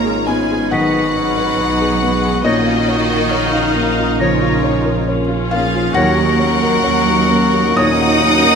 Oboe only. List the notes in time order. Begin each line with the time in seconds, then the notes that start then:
Already playing: A#4
0.27 G#4
0.71 F#4
2.46 D#4
4.19 C#4
5.51 F4
5.93 F#4
7.76 D#5